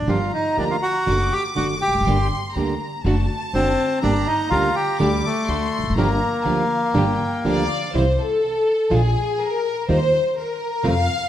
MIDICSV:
0, 0, Header, 1, 6, 480
1, 0, Start_track
1, 0, Tempo, 491803
1, 82, Time_signature, 4, 2, 24, 8
1, 7761, Tempo, 482703
1, 11077, End_track
2, 0, Start_track
2, 0, Title_t, "Violin section"
2, 0, Program_c, 0, 48
2, 78, Note_on_c, 0, 82, 71
2, 1011, Note_off_c, 0, 82, 0
2, 1041, Note_on_c, 0, 86, 75
2, 2014, Note_off_c, 0, 86, 0
2, 2026, Note_on_c, 0, 84, 84
2, 2496, Note_on_c, 0, 82, 67
2, 2503, Note_off_c, 0, 84, 0
2, 2971, Note_on_c, 0, 81, 90
2, 2975, Note_off_c, 0, 82, 0
2, 3887, Note_off_c, 0, 81, 0
2, 3928, Note_on_c, 0, 82, 83
2, 4869, Note_on_c, 0, 86, 83
2, 4876, Note_off_c, 0, 82, 0
2, 5334, Note_on_c, 0, 84, 83
2, 5347, Note_off_c, 0, 86, 0
2, 5818, Note_on_c, 0, 82, 81
2, 5819, Note_off_c, 0, 84, 0
2, 6267, Note_off_c, 0, 82, 0
2, 6296, Note_on_c, 0, 77, 68
2, 6782, Note_off_c, 0, 77, 0
2, 6792, Note_on_c, 0, 79, 72
2, 7264, Note_on_c, 0, 77, 71
2, 7271, Note_on_c, 0, 74, 90
2, 7279, Note_off_c, 0, 79, 0
2, 7721, Note_off_c, 0, 77, 0
2, 7725, Note_off_c, 0, 74, 0
2, 7766, Note_on_c, 0, 72, 78
2, 8002, Note_on_c, 0, 69, 80
2, 8006, Note_off_c, 0, 72, 0
2, 8726, Note_off_c, 0, 69, 0
2, 8737, Note_on_c, 0, 68, 81
2, 9215, Note_off_c, 0, 68, 0
2, 9223, Note_on_c, 0, 70, 85
2, 9694, Note_on_c, 0, 72, 84
2, 9699, Note_off_c, 0, 70, 0
2, 10140, Note_off_c, 0, 72, 0
2, 10177, Note_on_c, 0, 70, 77
2, 10617, Note_off_c, 0, 70, 0
2, 10648, Note_on_c, 0, 77, 96
2, 11077, Note_off_c, 0, 77, 0
2, 11077, End_track
3, 0, Start_track
3, 0, Title_t, "Bandoneon"
3, 0, Program_c, 1, 23
3, 0, Note_on_c, 1, 62, 57
3, 89, Note_on_c, 1, 65, 56
3, 104, Note_off_c, 1, 62, 0
3, 312, Note_off_c, 1, 65, 0
3, 329, Note_on_c, 1, 63, 57
3, 553, Note_off_c, 1, 63, 0
3, 576, Note_on_c, 1, 62, 61
3, 629, Note_off_c, 1, 62, 0
3, 690, Note_on_c, 1, 65, 68
3, 744, Note_off_c, 1, 65, 0
3, 802, Note_on_c, 1, 66, 68
3, 1290, Note_on_c, 1, 67, 74
3, 1305, Note_off_c, 1, 66, 0
3, 1400, Note_off_c, 1, 67, 0
3, 1524, Note_on_c, 1, 66, 69
3, 1635, Note_off_c, 1, 66, 0
3, 1767, Note_on_c, 1, 67, 65
3, 2222, Note_off_c, 1, 67, 0
3, 3456, Note_on_c, 1, 60, 81
3, 3897, Note_off_c, 1, 60, 0
3, 3931, Note_on_c, 1, 62, 79
3, 4168, Note_on_c, 1, 63, 78
3, 4174, Note_off_c, 1, 62, 0
3, 4387, Note_off_c, 1, 63, 0
3, 4392, Note_on_c, 1, 65, 82
3, 4639, Note_on_c, 1, 67, 78
3, 4641, Note_off_c, 1, 65, 0
3, 4860, Note_off_c, 1, 67, 0
3, 4885, Note_on_c, 1, 55, 70
3, 5125, Note_off_c, 1, 55, 0
3, 5131, Note_on_c, 1, 57, 77
3, 5797, Note_off_c, 1, 57, 0
3, 5835, Note_on_c, 1, 58, 71
3, 7485, Note_off_c, 1, 58, 0
3, 11077, End_track
4, 0, Start_track
4, 0, Title_t, "String section"
4, 0, Program_c, 2, 48
4, 75, Note_on_c, 2, 58, 55
4, 78, Note_on_c, 2, 65, 49
4, 82, Note_on_c, 2, 67, 57
4, 283, Note_off_c, 2, 58, 0
4, 284, Note_off_c, 2, 65, 0
4, 286, Note_off_c, 2, 67, 0
4, 567, Note_on_c, 2, 58, 40
4, 571, Note_on_c, 2, 65, 35
4, 571, Note_on_c, 2, 67, 42
4, 771, Note_off_c, 2, 58, 0
4, 773, Note_off_c, 2, 65, 0
4, 773, Note_off_c, 2, 67, 0
4, 1046, Note_on_c, 2, 57, 58
4, 1050, Note_on_c, 2, 62, 53
4, 1051, Note_on_c, 2, 66, 63
4, 1252, Note_off_c, 2, 57, 0
4, 1254, Note_off_c, 2, 62, 0
4, 1255, Note_off_c, 2, 66, 0
4, 1531, Note_on_c, 2, 57, 42
4, 1533, Note_on_c, 2, 62, 35
4, 1536, Note_on_c, 2, 66, 47
4, 1737, Note_off_c, 2, 57, 0
4, 1737, Note_off_c, 2, 62, 0
4, 1739, Note_off_c, 2, 66, 0
4, 2022, Note_on_c, 2, 58, 56
4, 2022, Note_on_c, 2, 62, 50
4, 2025, Note_on_c, 2, 67, 62
4, 2224, Note_off_c, 2, 58, 0
4, 2224, Note_off_c, 2, 62, 0
4, 2225, Note_off_c, 2, 67, 0
4, 2495, Note_on_c, 2, 62, 40
4, 2496, Note_on_c, 2, 58, 41
4, 2497, Note_on_c, 2, 67, 44
4, 2698, Note_off_c, 2, 58, 0
4, 2698, Note_off_c, 2, 62, 0
4, 2699, Note_off_c, 2, 67, 0
4, 2981, Note_on_c, 2, 57, 66
4, 2982, Note_on_c, 2, 66, 67
4, 2984, Note_on_c, 2, 62, 57
4, 3179, Note_off_c, 2, 57, 0
4, 3180, Note_off_c, 2, 66, 0
4, 3181, Note_off_c, 2, 62, 0
4, 3458, Note_on_c, 2, 57, 46
4, 3458, Note_on_c, 2, 62, 39
4, 3461, Note_on_c, 2, 66, 47
4, 3656, Note_off_c, 2, 57, 0
4, 3656, Note_off_c, 2, 62, 0
4, 3657, Note_off_c, 2, 66, 0
4, 3935, Note_on_c, 2, 58, 64
4, 3936, Note_on_c, 2, 62, 54
4, 3939, Note_on_c, 2, 67, 69
4, 4131, Note_off_c, 2, 58, 0
4, 4132, Note_off_c, 2, 62, 0
4, 4134, Note_off_c, 2, 67, 0
4, 4411, Note_on_c, 2, 58, 45
4, 4412, Note_on_c, 2, 62, 44
4, 4413, Note_on_c, 2, 67, 51
4, 4606, Note_off_c, 2, 58, 0
4, 4606, Note_off_c, 2, 62, 0
4, 4607, Note_off_c, 2, 67, 0
4, 4877, Note_on_c, 2, 57, 68
4, 4877, Note_on_c, 2, 62, 59
4, 4880, Note_on_c, 2, 67, 67
4, 5076, Note_off_c, 2, 57, 0
4, 5076, Note_off_c, 2, 62, 0
4, 5078, Note_off_c, 2, 67, 0
4, 5356, Note_on_c, 2, 57, 51
4, 5356, Note_on_c, 2, 62, 40
4, 5356, Note_on_c, 2, 66, 50
4, 5553, Note_off_c, 2, 66, 0
4, 5554, Note_off_c, 2, 57, 0
4, 5554, Note_off_c, 2, 62, 0
4, 5828, Note_on_c, 2, 58, 59
4, 5828, Note_on_c, 2, 65, 58
4, 5830, Note_on_c, 2, 67, 73
4, 6028, Note_off_c, 2, 58, 0
4, 6029, Note_off_c, 2, 65, 0
4, 6029, Note_off_c, 2, 67, 0
4, 6305, Note_on_c, 2, 58, 51
4, 6307, Note_on_c, 2, 65, 44
4, 6309, Note_on_c, 2, 67, 52
4, 6507, Note_off_c, 2, 58, 0
4, 6508, Note_off_c, 2, 65, 0
4, 6509, Note_off_c, 2, 67, 0
4, 6783, Note_on_c, 2, 58, 70
4, 6786, Note_on_c, 2, 65, 60
4, 6788, Note_on_c, 2, 67, 76
4, 6990, Note_off_c, 2, 58, 0
4, 6991, Note_off_c, 2, 65, 0
4, 6992, Note_off_c, 2, 67, 0
4, 7274, Note_on_c, 2, 58, 50
4, 7278, Note_on_c, 2, 65, 45
4, 7278, Note_on_c, 2, 67, 52
4, 7481, Note_off_c, 2, 58, 0
4, 7483, Note_off_c, 2, 65, 0
4, 7483, Note_off_c, 2, 67, 0
4, 11077, End_track
5, 0, Start_track
5, 0, Title_t, "Nylon-string guitar"
5, 0, Program_c, 3, 24
5, 72, Note_on_c, 3, 50, 56
5, 74, Note_on_c, 3, 53, 59
5, 79, Note_on_c, 3, 62, 60
5, 80, Note_on_c, 3, 58, 58
5, 90, Note_on_c, 3, 67, 68
5, 168, Note_off_c, 3, 50, 0
5, 169, Note_off_c, 3, 53, 0
5, 171, Note_off_c, 3, 58, 0
5, 171, Note_off_c, 3, 62, 0
5, 176, Note_off_c, 3, 67, 0
5, 557, Note_on_c, 3, 50, 45
5, 558, Note_on_c, 3, 53, 47
5, 561, Note_on_c, 3, 58, 52
5, 567, Note_on_c, 3, 62, 45
5, 568, Note_on_c, 3, 67, 52
5, 732, Note_off_c, 3, 50, 0
5, 733, Note_off_c, 3, 53, 0
5, 734, Note_off_c, 3, 58, 0
5, 738, Note_off_c, 3, 62, 0
5, 738, Note_off_c, 3, 67, 0
5, 1037, Note_on_c, 3, 50, 56
5, 1041, Note_on_c, 3, 57, 54
5, 1045, Note_on_c, 3, 66, 65
5, 1048, Note_on_c, 3, 62, 65
5, 1135, Note_off_c, 3, 50, 0
5, 1136, Note_off_c, 3, 57, 0
5, 1139, Note_off_c, 3, 66, 0
5, 1140, Note_off_c, 3, 62, 0
5, 1516, Note_on_c, 3, 50, 43
5, 1526, Note_on_c, 3, 62, 46
5, 1530, Note_on_c, 3, 57, 51
5, 1531, Note_on_c, 3, 66, 54
5, 1696, Note_off_c, 3, 50, 0
5, 1700, Note_off_c, 3, 62, 0
5, 1703, Note_off_c, 3, 57, 0
5, 1703, Note_off_c, 3, 66, 0
5, 2020, Note_on_c, 3, 55, 70
5, 2024, Note_on_c, 3, 50, 60
5, 2028, Note_on_c, 3, 58, 67
5, 2030, Note_on_c, 3, 62, 68
5, 2032, Note_on_c, 3, 67, 60
5, 2110, Note_off_c, 3, 55, 0
5, 2112, Note_off_c, 3, 50, 0
5, 2114, Note_off_c, 3, 58, 0
5, 2115, Note_off_c, 3, 62, 0
5, 2116, Note_off_c, 3, 67, 0
5, 2504, Note_on_c, 3, 55, 46
5, 2505, Note_on_c, 3, 50, 44
5, 2508, Note_on_c, 3, 58, 50
5, 2509, Note_on_c, 3, 67, 54
5, 2513, Note_on_c, 3, 62, 52
5, 2669, Note_off_c, 3, 55, 0
5, 2670, Note_off_c, 3, 50, 0
5, 2672, Note_off_c, 3, 58, 0
5, 2672, Note_off_c, 3, 67, 0
5, 2674, Note_off_c, 3, 62, 0
5, 2984, Note_on_c, 3, 50, 68
5, 2987, Note_on_c, 3, 57, 66
5, 2991, Note_on_c, 3, 66, 66
5, 2994, Note_on_c, 3, 62, 68
5, 3069, Note_off_c, 3, 50, 0
5, 3071, Note_off_c, 3, 57, 0
5, 3073, Note_off_c, 3, 66, 0
5, 3074, Note_off_c, 3, 62, 0
5, 3454, Note_on_c, 3, 50, 47
5, 3459, Note_on_c, 3, 57, 47
5, 3464, Note_on_c, 3, 62, 55
5, 3466, Note_on_c, 3, 66, 52
5, 3621, Note_off_c, 3, 50, 0
5, 3624, Note_off_c, 3, 57, 0
5, 3626, Note_off_c, 3, 62, 0
5, 3627, Note_off_c, 3, 66, 0
5, 3927, Note_on_c, 3, 50, 63
5, 3930, Note_on_c, 3, 62, 72
5, 3931, Note_on_c, 3, 55, 78
5, 3933, Note_on_c, 3, 58, 65
5, 3942, Note_on_c, 3, 67, 71
5, 4016, Note_off_c, 3, 50, 0
5, 4018, Note_off_c, 3, 55, 0
5, 4018, Note_off_c, 3, 62, 0
5, 4019, Note_off_c, 3, 58, 0
5, 4024, Note_off_c, 3, 67, 0
5, 4406, Note_on_c, 3, 50, 50
5, 4413, Note_on_c, 3, 55, 55
5, 4413, Note_on_c, 3, 58, 57
5, 4413, Note_on_c, 3, 67, 59
5, 4417, Note_on_c, 3, 62, 54
5, 4571, Note_off_c, 3, 50, 0
5, 4574, Note_off_c, 3, 55, 0
5, 4574, Note_off_c, 3, 58, 0
5, 4574, Note_off_c, 3, 67, 0
5, 4576, Note_off_c, 3, 62, 0
5, 4875, Note_on_c, 3, 50, 68
5, 4878, Note_on_c, 3, 57, 75
5, 4884, Note_on_c, 3, 67, 77
5, 4887, Note_on_c, 3, 62, 80
5, 4964, Note_off_c, 3, 50, 0
5, 4965, Note_off_c, 3, 57, 0
5, 4968, Note_off_c, 3, 67, 0
5, 4970, Note_off_c, 3, 62, 0
5, 5352, Note_on_c, 3, 50, 57
5, 5357, Note_on_c, 3, 57, 53
5, 5357, Note_on_c, 3, 62, 52
5, 5357, Note_on_c, 3, 66, 55
5, 5519, Note_off_c, 3, 50, 0
5, 5521, Note_off_c, 3, 62, 0
5, 5521, Note_off_c, 3, 66, 0
5, 5522, Note_off_c, 3, 57, 0
5, 5827, Note_on_c, 3, 50, 61
5, 5830, Note_on_c, 3, 53, 73
5, 5839, Note_on_c, 3, 62, 73
5, 5840, Note_on_c, 3, 58, 68
5, 5842, Note_on_c, 3, 67, 70
5, 5916, Note_off_c, 3, 50, 0
5, 5918, Note_off_c, 3, 53, 0
5, 5922, Note_off_c, 3, 62, 0
5, 5923, Note_off_c, 3, 58, 0
5, 5924, Note_off_c, 3, 67, 0
5, 6291, Note_on_c, 3, 50, 56
5, 6300, Note_on_c, 3, 53, 58
5, 6303, Note_on_c, 3, 58, 55
5, 6304, Note_on_c, 3, 62, 62
5, 6307, Note_on_c, 3, 67, 58
5, 6467, Note_off_c, 3, 50, 0
5, 6471, Note_off_c, 3, 53, 0
5, 6473, Note_off_c, 3, 58, 0
5, 6473, Note_off_c, 3, 62, 0
5, 6475, Note_off_c, 3, 67, 0
5, 6773, Note_on_c, 3, 50, 72
5, 6775, Note_on_c, 3, 53, 79
5, 6779, Note_on_c, 3, 62, 86
5, 6785, Note_on_c, 3, 58, 73
5, 6786, Note_on_c, 3, 67, 76
5, 6870, Note_off_c, 3, 50, 0
5, 6872, Note_off_c, 3, 53, 0
5, 6873, Note_off_c, 3, 62, 0
5, 6876, Note_off_c, 3, 58, 0
5, 6877, Note_off_c, 3, 67, 0
5, 7267, Note_on_c, 3, 50, 55
5, 7271, Note_on_c, 3, 53, 55
5, 7274, Note_on_c, 3, 58, 56
5, 7274, Note_on_c, 3, 62, 56
5, 7280, Note_on_c, 3, 67, 58
5, 7444, Note_off_c, 3, 50, 0
5, 7446, Note_off_c, 3, 53, 0
5, 7447, Note_off_c, 3, 58, 0
5, 7447, Note_off_c, 3, 62, 0
5, 7450, Note_off_c, 3, 67, 0
5, 7749, Note_on_c, 3, 52, 60
5, 7752, Note_on_c, 3, 48, 66
5, 7757, Note_on_c, 3, 55, 66
5, 7758, Note_on_c, 3, 60, 70
5, 7761, Note_on_c, 3, 64, 75
5, 7846, Note_off_c, 3, 52, 0
5, 7847, Note_off_c, 3, 48, 0
5, 7850, Note_off_c, 3, 55, 0
5, 7850, Note_off_c, 3, 60, 0
5, 7852, Note_off_c, 3, 64, 0
5, 8705, Note_on_c, 3, 53, 65
5, 8707, Note_on_c, 3, 56, 67
5, 8714, Note_on_c, 3, 62, 67
5, 8717, Note_on_c, 3, 65, 76
5, 8806, Note_off_c, 3, 53, 0
5, 8807, Note_off_c, 3, 56, 0
5, 8811, Note_off_c, 3, 62, 0
5, 8812, Note_off_c, 3, 65, 0
5, 9686, Note_on_c, 3, 51, 69
5, 9687, Note_on_c, 3, 55, 68
5, 9694, Note_on_c, 3, 65, 79
5, 9696, Note_on_c, 3, 63, 75
5, 9779, Note_off_c, 3, 51, 0
5, 9780, Note_off_c, 3, 55, 0
5, 9783, Note_off_c, 3, 65, 0
5, 9784, Note_off_c, 3, 63, 0
5, 10627, Note_on_c, 3, 48, 74
5, 10634, Note_on_c, 3, 53, 67
5, 10634, Note_on_c, 3, 60, 85
5, 10635, Note_on_c, 3, 57, 87
5, 10637, Note_on_c, 3, 65, 76
5, 10725, Note_off_c, 3, 48, 0
5, 10729, Note_off_c, 3, 53, 0
5, 10729, Note_off_c, 3, 57, 0
5, 10729, Note_off_c, 3, 60, 0
5, 10730, Note_off_c, 3, 65, 0
5, 11077, End_track
6, 0, Start_track
6, 0, Title_t, "Upright bass"
6, 0, Program_c, 4, 32
6, 19, Note_on_c, 4, 30, 52
6, 66, Note_off_c, 4, 30, 0
6, 72, Note_on_c, 4, 31, 67
6, 281, Note_off_c, 4, 31, 0
6, 562, Note_on_c, 4, 38, 42
6, 768, Note_off_c, 4, 38, 0
6, 1045, Note_on_c, 4, 30, 71
6, 1252, Note_off_c, 4, 30, 0
6, 1532, Note_on_c, 4, 30, 50
6, 1737, Note_off_c, 4, 30, 0
6, 1830, Note_on_c, 4, 28, 35
6, 1889, Note_off_c, 4, 28, 0
6, 1895, Note_on_c, 4, 29, 49
6, 1948, Note_off_c, 4, 29, 0
6, 1954, Note_on_c, 4, 30, 62
6, 2013, Note_off_c, 4, 30, 0
6, 2019, Note_on_c, 4, 31, 74
6, 2222, Note_off_c, 4, 31, 0
6, 2494, Note_on_c, 4, 38, 48
6, 2697, Note_off_c, 4, 38, 0
6, 2972, Note_on_c, 4, 30, 86
6, 3175, Note_off_c, 4, 30, 0
6, 3448, Note_on_c, 4, 30, 55
6, 3651, Note_off_c, 4, 30, 0
6, 3934, Note_on_c, 4, 31, 79
6, 4131, Note_off_c, 4, 31, 0
6, 4401, Note_on_c, 4, 38, 55
6, 4601, Note_off_c, 4, 38, 0
6, 4883, Note_on_c, 4, 38, 84
6, 5079, Note_off_c, 4, 38, 0
6, 5350, Note_on_c, 4, 38, 50
6, 5551, Note_off_c, 4, 38, 0
6, 5646, Note_on_c, 4, 28, 41
6, 5689, Note_off_c, 4, 28, 0
6, 5695, Note_on_c, 4, 29, 60
6, 5749, Note_off_c, 4, 29, 0
6, 5755, Note_on_c, 4, 30, 64
6, 5807, Note_off_c, 4, 30, 0
6, 5813, Note_on_c, 4, 31, 86
6, 6021, Note_off_c, 4, 31, 0
6, 6299, Note_on_c, 4, 38, 51
6, 6503, Note_off_c, 4, 38, 0
6, 6776, Note_on_c, 4, 31, 89
6, 6986, Note_off_c, 4, 31, 0
6, 7266, Note_on_c, 4, 38, 60
6, 7477, Note_off_c, 4, 38, 0
6, 7752, Note_on_c, 4, 36, 78
6, 7961, Note_off_c, 4, 36, 0
6, 8716, Note_on_c, 4, 34, 84
6, 8925, Note_off_c, 4, 34, 0
6, 9686, Note_on_c, 4, 39, 83
6, 9891, Note_off_c, 4, 39, 0
6, 10649, Note_on_c, 4, 41, 87
6, 10847, Note_off_c, 4, 41, 0
6, 11077, End_track
0, 0, End_of_file